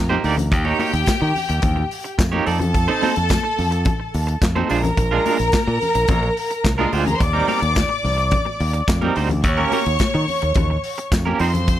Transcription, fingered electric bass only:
0, 0, Header, 1, 2, 480
1, 0, Start_track
1, 0, Key_signature, -3, "major"
1, 0, Tempo, 558140
1, 445, Time_signature, 4, 2, 24, 8
1, 10144, End_track
2, 0, Start_track
2, 0, Title_t, "Fingered electric bass"
2, 0, Program_c, 0, 33
2, 0, Note_on_c, 0, 41, 83
2, 138, Note_off_c, 0, 41, 0
2, 208, Note_on_c, 0, 38, 83
2, 446, Note_off_c, 0, 38, 0
2, 446, Note_on_c, 0, 39, 114
2, 617, Note_off_c, 0, 39, 0
2, 804, Note_on_c, 0, 39, 85
2, 890, Note_off_c, 0, 39, 0
2, 1046, Note_on_c, 0, 51, 100
2, 1131, Note_off_c, 0, 51, 0
2, 1286, Note_on_c, 0, 39, 96
2, 1370, Note_off_c, 0, 39, 0
2, 1404, Note_on_c, 0, 39, 100
2, 1575, Note_off_c, 0, 39, 0
2, 1882, Note_on_c, 0, 41, 103
2, 2053, Note_off_c, 0, 41, 0
2, 2124, Note_on_c, 0, 41, 110
2, 2466, Note_off_c, 0, 41, 0
2, 2727, Note_on_c, 0, 41, 78
2, 2896, Note_off_c, 0, 41, 0
2, 3085, Note_on_c, 0, 41, 83
2, 3340, Note_off_c, 0, 41, 0
2, 3564, Note_on_c, 0, 39, 95
2, 3734, Note_off_c, 0, 39, 0
2, 3799, Note_on_c, 0, 41, 90
2, 3970, Note_off_c, 0, 41, 0
2, 4046, Note_on_c, 0, 34, 102
2, 4215, Note_off_c, 0, 34, 0
2, 4279, Note_on_c, 0, 34, 93
2, 4450, Note_off_c, 0, 34, 0
2, 4641, Note_on_c, 0, 34, 89
2, 4725, Note_off_c, 0, 34, 0
2, 4880, Note_on_c, 0, 46, 102
2, 4965, Note_off_c, 0, 46, 0
2, 5118, Note_on_c, 0, 34, 99
2, 5204, Note_off_c, 0, 34, 0
2, 5235, Note_on_c, 0, 34, 101
2, 5407, Note_off_c, 0, 34, 0
2, 5718, Note_on_c, 0, 36, 82
2, 5889, Note_off_c, 0, 36, 0
2, 5959, Note_on_c, 0, 38, 91
2, 6130, Note_off_c, 0, 38, 0
2, 6198, Note_on_c, 0, 39, 90
2, 6369, Note_off_c, 0, 39, 0
2, 6556, Note_on_c, 0, 39, 95
2, 6728, Note_off_c, 0, 39, 0
2, 6919, Note_on_c, 0, 36, 96
2, 7176, Note_off_c, 0, 36, 0
2, 7399, Note_on_c, 0, 39, 93
2, 7571, Note_off_c, 0, 39, 0
2, 7639, Note_on_c, 0, 41, 92
2, 7811, Note_off_c, 0, 41, 0
2, 7884, Note_on_c, 0, 38, 91
2, 8118, Note_off_c, 0, 38, 0
2, 8118, Note_on_c, 0, 39, 113
2, 8290, Note_off_c, 0, 39, 0
2, 8484, Note_on_c, 0, 39, 86
2, 8568, Note_off_c, 0, 39, 0
2, 8725, Note_on_c, 0, 51, 113
2, 8809, Note_off_c, 0, 51, 0
2, 8966, Note_on_c, 0, 39, 86
2, 9050, Note_off_c, 0, 39, 0
2, 9080, Note_on_c, 0, 39, 101
2, 9253, Note_off_c, 0, 39, 0
2, 9562, Note_on_c, 0, 41, 93
2, 9734, Note_off_c, 0, 41, 0
2, 9805, Note_on_c, 0, 41, 103
2, 10144, Note_off_c, 0, 41, 0
2, 10144, End_track
0, 0, End_of_file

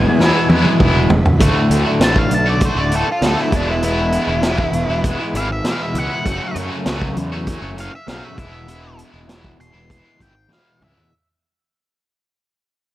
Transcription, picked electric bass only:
0, 0, Header, 1, 2, 480
1, 0, Start_track
1, 0, Tempo, 607287
1, 1107, Time_signature, 4, 2, 24, 8
1, 10230, End_track
2, 0, Start_track
2, 0, Title_t, "Picked electric bass"
2, 0, Program_c, 0, 34
2, 36, Note_on_c, 0, 40, 82
2, 237, Note_off_c, 0, 40, 0
2, 391, Note_on_c, 0, 40, 80
2, 492, Note_off_c, 0, 40, 0
2, 632, Note_on_c, 0, 28, 87
2, 834, Note_off_c, 0, 28, 0
2, 865, Note_on_c, 0, 28, 73
2, 974, Note_off_c, 0, 28, 0
2, 991, Note_on_c, 0, 26, 76
2, 1097, Note_off_c, 0, 26, 0
2, 1111, Note_on_c, 0, 26, 85
2, 1211, Note_off_c, 0, 26, 0
2, 1344, Note_on_c, 0, 38, 85
2, 1447, Note_off_c, 0, 38, 0
2, 1582, Note_on_c, 0, 33, 78
2, 1787, Note_off_c, 0, 33, 0
2, 1819, Note_on_c, 0, 35, 94
2, 2126, Note_off_c, 0, 35, 0
2, 2184, Note_on_c, 0, 26, 86
2, 2387, Note_off_c, 0, 26, 0
2, 2543, Note_on_c, 0, 38, 86
2, 2645, Note_off_c, 0, 38, 0
2, 2783, Note_on_c, 0, 28, 88
2, 3292, Note_off_c, 0, 28, 0
2, 3378, Note_on_c, 0, 28, 80
2, 3685, Note_off_c, 0, 28, 0
2, 3739, Note_on_c, 0, 28, 78
2, 3842, Note_off_c, 0, 28, 0
2, 3860, Note_on_c, 0, 28, 82
2, 4064, Note_off_c, 0, 28, 0
2, 4220, Note_on_c, 0, 32, 77
2, 4425, Note_off_c, 0, 32, 0
2, 4698, Note_on_c, 0, 37, 76
2, 4801, Note_off_c, 0, 37, 0
2, 4945, Note_on_c, 0, 30, 85
2, 5045, Note_off_c, 0, 30, 0
2, 5182, Note_on_c, 0, 42, 93
2, 5284, Note_off_c, 0, 42, 0
2, 5422, Note_on_c, 0, 37, 87
2, 5626, Note_off_c, 0, 37, 0
2, 5666, Note_on_c, 0, 40, 80
2, 5970, Note_off_c, 0, 40, 0
2, 6023, Note_on_c, 0, 30, 73
2, 6227, Note_off_c, 0, 30, 0
2, 6385, Note_on_c, 0, 35, 80
2, 6486, Note_off_c, 0, 35, 0
2, 6621, Note_on_c, 0, 28, 83
2, 7131, Note_off_c, 0, 28, 0
2, 7222, Note_on_c, 0, 28, 83
2, 7529, Note_off_c, 0, 28, 0
2, 7580, Note_on_c, 0, 28, 70
2, 7684, Note_off_c, 0, 28, 0
2, 7697, Note_on_c, 0, 28, 77
2, 7904, Note_off_c, 0, 28, 0
2, 8062, Note_on_c, 0, 32, 68
2, 8267, Note_off_c, 0, 32, 0
2, 8543, Note_on_c, 0, 37, 73
2, 8646, Note_off_c, 0, 37, 0
2, 10230, End_track
0, 0, End_of_file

